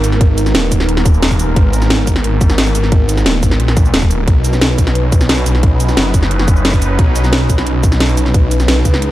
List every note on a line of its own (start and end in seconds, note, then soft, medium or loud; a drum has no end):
0.00 0.53 G#1 loud
0.00 4.24 G#3 medium
0.00 4.24 B3 medium
0.00 4.24 D#4 medium
0.00 4.24 A#4 medium
0.00 closed hi-hat loud
0.00 cabasa medium
0.12 snare soft
0.21 kick loud
0.21 closed hi-hat medium
0.38 closed hi-hat loud
0.38 cabasa medium
0.46 snare soft
0.46 cabasa soft
0.55 1.55 D#1 loud
0.55 snare loud
0.55 closed hi-hat medium
0.72 kick medium
0.72 closed hi-hat loud
0.72 cabasa medium
0.80 snare medium
0.89 closed hi-hat medium
0.97 snare medium
1.06 kick loud
1.06 closed hi-hat loud
1.06 cabasa medium
1.14 cabasa soft
1.23 snare loud
1.23 closed hi-hat medium
1.31 kick medium
1.31 cabasa soft
1.39 closed hi-hat loud
1.39 cabasa medium
1.56 2.06 G#1 loud
1.56 kick loud
1.56 closed hi-hat medium
1.73 closed hi-hat loud
1.73 cabasa medium
1.82 snare soft
1.82 cabasa soft
1.90 snare loud
1.90 closed hi-hat medium
2.07 2.23 G#1 medium
2.07 kick medium
2.07 closed hi-hat medium
2.07 cabasa medium
2.16 snare medium
2.24 2.57 G#1 loud
2.24 closed hi-hat medium
2.41 kick loud
2.41 closed hi-hat medium
2.41 cabasa medium
2.50 snare medium
2.50 cabasa soft
2.58 2.74 G#1 loud
2.58 snare loud
2.58 closed hi-hat medium
2.67 cabasa soft
2.75 3.24 G#1 loud
2.75 closed hi-hat medium
2.75 cabasa medium
2.84 snare soft
2.92 kick loud
2.92 closed hi-hat medium
3.09 closed hi-hat loud
3.09 cabasa medium
3.17 snare soft
3.17 cabasa soft
3.26 3.41 D#1 loud
3.26 snare loud
3.26 closed hi-hat medium
3.43 3.58 G#1 medium
3.43 kick medium
3.43 closed hi-hat loud
3.43 cabasa medium
3.51 snare medium
3.60 3.92 A#1 loud
3.60 closed hi-hat medium
3.68 snare medium
3.77 kick loud
3.77 closed hi-hat medium
3.77 cabasa medium
3.85 cabasa soft
3.94 4.26 D#1 medium
3.94 snare loud
3.94 closed hi-hat medium
4.02 kick medium
4.02 cabasa soft
4.11 closed hi-hat medium
4.11 cabasa medium
4.28 4.77 B1 loud
4.28 9.11 F#3 medium
4.28 9.11 C#4 medium
4.28 9.11 D#4 medium
4.28 9.11 B4 medium
4.28 kick loud
4.28 closed hi-hat medium
4.45 closed hi-hat loud
4.45 cabasa medium
4.53 snare soft
4.53 cabasa soft
4.61 snare loud
4.61 closed hi-hat medium
4.78 4.94 B1 loud
4.78 kick medium
4.78 closed hi-hat medium
4.78 cabasa medium
4.87 snare medium
4.95 5.28 B1 medium
4.95 closed hi-hat medium
5.12 kick loud
5.12 closed hi-hat medium
5.12 cabasa medium
5.21 snare medium
5.21 cabasa soft
5.29 5.45 B1 loud
5.29 snare loud
5.29 closed hi-hat medium
5.38 cabasa soft
5.46 5.96 B1 loud
5.46 closed hi-hat medium
5.46 cabasa medium
5.55 snare soft
5.63 kick loud
5.63 closed hi-hat medium
5.80 closed hi-hat loud
5.80 cabasa medium
5.89 snare soft
5.89 cabasa soft
5.97 6.97 F#1 loud
5.97 snare loud
5.97 closed hi-hat medium
6.14 kick medium
6.14 closed hi-hat medium
6.14 cabasa medium
6.23 snare medium
6.31 closed hi-hat medium
6.39 snare soft
6.48 kick loud
6.48 closed hi-hat medium
6.48 cabasa medium
6.56 cabasa soft
6.65 snare loud
6.65 closed hi-hat medium
6.73 kick medium
6.73 cabasa soft
6.82 closed hi-hat medium
6.82 cabasa medium
6.99 7.48 B1 medium
6.99 kick loud
6.99 closed hi-hat medium
7.16 closed hi-hat loud
7.16 cabasa medium
7.24 snare soft
7.24 cabasa soft
7.33 snare loud
7.33 closed hi-hat medium
7.50 7.65 B1 medium
7.50 kick medium
7.50 closed hi-hat loud
7.50 cabasa medium
7.58 snare medium
7.67 7.99 B1 loud
7.67 closed hi-hat medium
7.83 kick loud
7.83 closed hi-hat loud
7.83 cabasa medium
7.92 snare medium
7.92 cabasa soft
8.00 8.16 B1 loud
8.00 snare loud
8.00 closed hi-hat medium
8.09 cabasa soft
8.17 8.67 B1 loud
8.17 closed hi-hat medium
8.17 cabasa medium
8.26 snare soft
8.34 kick loud
8.34 closed hi-hat medium
8.51 closed hi-hat loud
8.51 cabasa medium
8.60 snare soft
8.60 cabasa soft
8.68 8.84 B1 loud
8.68 snare loud
8.68 closed hi-hat medium
8.85 9.11 C#2 medium
8.85 kick medium
8.85 closed hi-hat loud
8.85 cabasa medium
8.94 snare medium
9.02 closed hi-hat medium